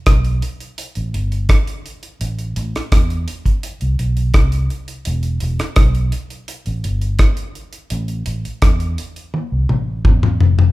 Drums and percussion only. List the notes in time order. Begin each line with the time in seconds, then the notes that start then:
0.06 kick, cross-stick, closed hi-hat
0.25 closed hi-hat
0.42 closed hi-hat
0.60 closed hi-hat
0.78 closed hi-hat
0.95 closed hi-hat
1.14 closed hi-hat
1.32 closed hi-hat
1.49 kick, cross-stick, closed hi-hat
1.67 closed hi-hat
1.86 closed hi-hat
2.03 closed hi-hat
2.21 closed hi-hat
2.39 closed hi-hat
2.56 closed hi-hat
2.76 cross-stick, closed hi-hat
2.92 kick, cross-stick, closed hi-hat
3.10 closed hi-hat
3.28 closed hi-hat
3.46 kick, closed hi-hat
3.63 closed hi-hat
3.81 closed hi-hat
3.99 closed hi-hat
4.17 closed hi-hat
4.34 kick, cross-stick, closed hi-hat
4.52 closed hi-hat
4.70 closed hi-hat
4.88 closed hi-hat
5.05 closed hi-hat
5.23 closed hi-hat
5.40 closed hi-hat
5.59 cross-stick, closed hi-hat
5.76 kick, cross-stick, closed hi-hat
5.95 closed hi-hat
6.12 closed hi-hat
6.30 closed hi-hat
6.48 closed hi-hat
6.66 closed hi-hat
6.84 closed hi-hat
7.02 closed hi-hat
7.19 kick, cross-stick, closed hi-hat
7.37 closed hi-hat
7.55 closed hi-hat
7.73 closed hi-hat
7.90 closed hi-hat
8.08 closed hi-hat
8.26 closed hi-hat
8.45 closed hi-hat
8.62 kick, cross-stick, closed hi-hat
8.80 closed hi-hat
8.98 closed hi-hat
9.16 closed hi-hat
9.34 high tom
9.69 mid tom
10.05 kick, mid tom
10.23 mid tom
10.40 floor tom
10.59 floor tom